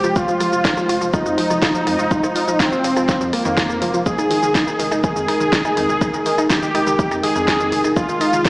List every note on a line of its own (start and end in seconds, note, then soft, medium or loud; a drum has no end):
0.00 0.14 F1 medium
0.00 0.09 F3 medium
0.00 4.02 G#3 medium
0.00 4.02 F4 medium
0.00 0.09 F4 medium
0.00 0.17 G4 loud
0.00 4.02 C5 medium
0.00 cross-stick soft
0.00 shaker soft
0.16 1.04 F4 loud
0.16 0.19 F4 medium
0.16 0.19 F5 medium
0.16 kick loud
0.16 shaker medium
0.28 0.38 F1 medium
0.28 0.33 F3 medium
0.28 0.33 F4 medium
0.28 shaker soft
0.40 0.46 F3 medium
0.40 0.46 F4 medium
0.40 cross-stick soft
0.40 open hi-hat loud
0.40 shaker soft
0.53 0.63 F1 medium
0.53 0.56 F4 medium
0.53 0.56 F5 medium
0.53 shaker soft
0.65 0.70 F3 medium
0.65 0.70 F4 medium
0.65 kick loud
0.65 snare loud
0.65 shaker medium
0.77 0.82 F3 medium
0.77 0.82 F4 medium
0.77 cross-stick medium
0.77 shaker soft
0.89 0.99 F1 loud
0.89 0.92 F4 medium
0.89 0.92 F5 medium
0.89 open hi-hat loud
0.89 shaker soft
1.01 1.12 F1 medium
1.01 1.06 F3 medium
1.01 1.06 F4 medium
1.01 shaker soft
1.13 1.19 F3 medium
1.13 2.61 D#4 loud
1.13 1.19 F4 medium
1.13 kick loud
1.13 cross-stick medium
1.13 shaker medium
1.26 1.36 F2 medium
1.26 1.29 F4 medium
1.26 1.29 F5 medium
1.26 shaker soft
1.38 1.43 F3 medium
1.38 1.43 F4 medium
1.38 open hi-hat loud
1.50 1.88 F1 medium
1.50 1.55 F3 medium
1.50 1.55 F4 medium
1.50 cross-stick medium
1.50 shaker soft
1.62 1.65 F4 medium
1.62 1.65 F5 medium
1.62 kick loud
1.62 snare loud
1.62 shaker medium
1.75 1.80 F3 medium
1.75 1.80 F4 medium
1.75 shaker soft
1.87 1.97 F2 medium
1.87 1.92 F3 medium
1.87 1.92 F4 medium
1.87 cross-stick soft
1.87 open hi-hat loud
1.99 2.09 F1 medium
1.99 2.02 F4 medium
1.99 2.02 F5 medium
1.99 shaker soft
2.11 2.16 F3 medium
2.11 2.16 F4 medium
2.11 kick loud
2.11 shaker medium
2.23 2.33 D#1 medium
2.23 2.28 F3 medium
2.23 2.28 F4 medium
2.23 cross-stick medium
2.23 shaker soft
2.35 2.39 F4 medium
2.35 2.39 F5 medium
2.35 open hi-hat loud
2.35 shaker soft
2.48 2.58 D#1 medium
2.48 2.53 F3 medium
2.48 2.53 F4 medium
2.48 shaker soft
2.60 2.65 F3 medium
2.60 3.23 C4 loud
2.60 2.65 F4 medium
2.60 kick loud
2.60 cross-stick medium
2.60 snare loud
2.60 shaker medium
2.72 2.75 F4 medium
2.72 2.75 F5 medium
2.72 shaker soft
2.84 2.94 F1 loud
2.84 2.89 F3 medium
2.84 2.89 F4 medium
2.84 open hi-hat loud
2.84 shaker soft
2.96 3.07 F1 medium
2.96 3.02 F3 medium
2.96 3.02 F4 medium
2.96 cross-stick medium
2.96 shaker soft
3.09 3.12 F4 medium
3.09 3.12 F5 medium
3.09 kick loud
3.09 snare medium
3.09 shaker medium
3.21 3.31 F2 medium
3.21 3.26 F3 medium
3.21 3.26 F4 medium
3.21 shaker soft
3.33 3.97 A#3 loud
3.33 cross-stick medium
3.33 open hi-hat loud
3.45 3.83 F2 medium
3.45 3.50 D#3 loud
3.45 3.50 D#4 medium
3.45 shaker soft
3.57 3.65 F4 medium
3.57 3.65 F5 medium
3.57 kick loud
3.57 snare loud
3.57 shaker medium
3.70 cross-stick medium
3.70 shaker soft
3.82 3.92 F1 medium
3.82 3.87 F3 medium
3.82 3.87 F4 medium
3.82 open hi-hat loud
3.94 4.04 F1 medium
3.94 4.02 F3 medium
3.94 4.02 F4 medium
3.94 shaker soft
4.06 4.11 D#3 medium
4.06 8.49 G#3 medium
4.06 4.11 D#4 medium
4.06 8.49 D#4 medium
4.06 4.94 G#4 loud
4.06 7.93 A#4 medium
4.06 kick loud
4.06 shaker medium
4.18 4.29 F1 medium
4.18 4.22 D#4 medium
4.18 4.22 D#5 medium
4.18 cross-stick medium
4.18 shaker soft
4.31 4.36 D#3 medium
4.31 4.36 D#4 medium
4.31 open hi-hat loud
4.31 shaker soft
4.43 4.53 F1 medium
4.43 4.48 D#3 medium
4.43 4.48 D#4 medium
4.43 shaker soft
4.55 4.58 D#4 medium
4.55 4.58 D#5 medium
4.55 kick loud
4.55 cross-stick medium
4.55 snare loud
4.55 shaker medium
4.67 4.72 D#3 medium
4.67 4.72 D#4 medium
4.67 shaker soft
4.79 4.90 F1 loud
4.79 4.84 D#3 medium
4.79 4.84 D#4 medium
4.79 open hi-hat loud
4.79 shaker soft
4.92 5.02 F1 medium
4.92 4.95 D#4 medium
4.92 4.95 D#5 medium
4.92 cross-stick medium
4.92 shaker soft
5.04 5.09 D#3 medium
5.04 5.09 D#4 medium
5.04 6.40 G#4 loud
5.04 kick loud
5.04 shaker medium
5.16 5.26 F2 medium
5.16 5.21 D#3 medium
5.16 5.21 D#4 medium
5.16 shaker soft
5.28 5.31 D#4 medium
5.28 5.31 D#5 medium
5.28 cross-stick medium
5.28 open hi-hat loud
5.40 5.78 F1 medium
5.40 5.46 D#3 medium
5.40 5.46 D#4 medium
5.40 shaker soft
5.53 5.58 D#3 medium
5.53 5.58 D#4 medium
5.53 kick loud
5.53 snare loud
5.53 shaker medium
5.65 5.68 D#4 medium
5.65 5.68 D#5 medium
5.65 cross-stick medium
5.65 shaker soft
5.77 5.87 F2 medium
5.77 5.82 D#3 medium
5.77 5.82 D#4 medium
5.77 open hi-hat loud
5.89 5.99 F1 medium
5.89 5.94 D#3 medium
5.89 5.94 D#4 medium
5.89 shaker soft
6.01 6.04 D#4 medium
6.01 6.04 D#5 medium
6.01 kick loud
6.01 cross-stick medium
6.01 shaker medium
6.14 6.24 D#1 medium
6.14 6.19 D#3 medium
6.14 6.19 D#4 medium
6.14 shaker soft
6.26 6.31 D#3 medium
6.26 6.31 D#4 medium
6.26 open hi-hat loud
6.26 shaker soft
6.38 6.48 D#1 medium
6.38 6.41 D#4 medium
6.38 6.41 D#5 medium
6.38 cross-stick medium
6.38 shaker soft
6.50 6.55 D#3 medium
6.50 6.55 D#4 medium
6.50 7.14 G4 loud
6.50 kick loud
6.50 snare loud
6.50 shaker medium
6.63 6.68 D#3 medium
6.63 6.68 D#4 medium
6.63 shaker soft
6.75 6.85 F1 loud
6.75 6.78 D#4 medium
6.75 6.78 D#5 medium
6.75 cross-stick medium
6.75 open hi-hat loud
6.75 shaker soft
6.87 6.97 F1 medium
6.87 6.92 D#3 medium
6.87 6.92 D#4 medium
6.87 shaker soft
6.99 7.04 D#3 medium
6.99 7.04 D#4 medium
6.99 kick loud
6.99 shaker medium
7.11 7.21 F2 medium
7.11 7.14 D#4 medium
7.11 7.14 D#5 medium
7.11 cross-stick medium
7.11 shaker soft
7.23 7.28 D#3 medium
7.23 7.28 D#4 medium
7.23 7.87 G#4 loud
7.23 open hi-hat loud
7.36 7.74 F2 medium
7.36 7.41 D#3 medium
7.36 7.41 D#4 medium
7.36 shaker soft
7.48 7.51 D#4 medium
7.48 7.51 D#5 medium
7.48 kick loud
7.48 cross-stick medium
7.48 snare loud
7.48 shaker medium
7.60 7.65 D#3 medium
7.60 7.65 D#4 medium
7.60 shaker soft
7.72 7.82 F1 loud
7.72 7.77 D#3 medium
7.72 7.77 D#4 medium
7.72 open hi-hat loud
7.84 7.94 F1 medium
7.84 7.87 D#4 medium
7.84 7.87 D#5 medium
7.84 cross-stick medium
7.84 shaker soft
7.96 8.02 D#3 medium
7.96 8.02 D#4 medium
7.96 8.49 F4 loud
7.96 8.49 G#4 medium
7.96 kick loud
7.96 shaker medium
8.09 8.19 F1 medium
8.09 8.14 D#3 medium
8.09 8.14 D#4 medium
8.09 shaker soft
8.21 8.24 D#4 medium
8.21 8.24 D#5 medium
8.21 cross-stick soft
8.21 open hi-hat loud
8.21 shaker soft
8.33 8.43 F1 medium
8.33 8.38 D#3 medium
8.33 8.38 D#4 medium
8.33 shaker soft
8.45 8.49 D#3 medium
8.45 8.49 D#4 medium
8.45 kick loud
8.45 snare loud
8.45 shaker medium